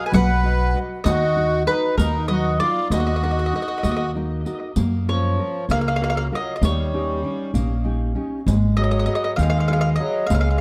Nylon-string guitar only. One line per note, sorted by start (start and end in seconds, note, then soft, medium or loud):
0.00 0.31 F#4 soft
0.00 0.32 B4 soft
0.00 0.32 D#5 medium
0.12 0.72 F#3 medium
0.44 0.73 F#4 soft
0.44 0.74 B4 soft
0.44 0.75 D#5 medium
0.74 0.99 F#4 soft
0.74 0.99 B4 soft
0.74 1.00 D#5 soft
1.05 1.65 D#3 medium
1.37 1.65 D#4 medium
1.37 1.66 F#4 soft
1.66 2.16 D#4 soft
1.66 2.16 F#4 soft
1.97 2.57 A#3 medium
2.28 2.78 F#3 soft
2.28 2.59 D#4 medium
2.28 2.60 A#4 medium
2.60 3.09 D#4 medium
2.60 3.10 A#4 medium
2.90 3.50 A#3 medium
3.23 3.52 D#4 soft
3.23 3.52 F#4 soft
3.23 3.53 A#4 medium
3.53 4.02 D#4 soft
3.53 4.03 F#4 soft
3.53 4.03 A#4 soft
3.83 4.43 A#3 medium
4.15 4.45 D#4 soft
4.15 4.45 F#4 soft
4.15 4.45 A#4 medium
4.46 4.70 D#4 soft
4.46 4.70 F#4 soft
4.46 4.70 A#4 soft
4.77 5.37 A#3 medium
5.08 5.57 C#4 soft
5.08 5.38 F4 soft
5.08 5.38 A#4 soft
5.39 5.88 F4 soft
5.39 5.88 A#4 soft
5.70 6.30 C#3 medium
6.01 6.31 F4 soft
6.01 6.31 F#4 soft
6.01 6.32 A#4 soft
6.32 6.56 F4 soft
6.32 6.56 F#4 soft
6.32 6.56 A#4 medium
6.63 7.22 D#3 medium
6.93 7.22 C#4 soft
6.93 7.23 D#4 soft
6.93 7.23 G4 medium
7.23 7.73 C#4 soft
7.23 7.73 D#4 soft
7.23 7.73 G4 medium
7.54 8.14 A#3 medium
7.84 8.14 C#4 soft
7.84 8.15 D#4 soft
7.84 8.15 G4 medium
8.15 8.40 C#4 medium
8.15 8.40 D#4 soft
8.15 8.40 G4 soft
8.47 9.06 G#3 medium
8.77 9.06 F#4 medium
8.77 9.06 G#4 soft
8.77 9.06 B4 soft
9.07 9.57 F#4 soft
9.07 9.57 G#4 soft
9.07 9.57 B4 soft
9.37 9.97 D#3 medium
9.69 9.98 F#4 soft
9.69 9.98 G#4 soft
9.69 9.99 B4 medium
9.99 10.24 F#4 soft
9.99 10.24 G#4 soft
9.99 10.24 B4 soft
10.30 10.61 C#3 medium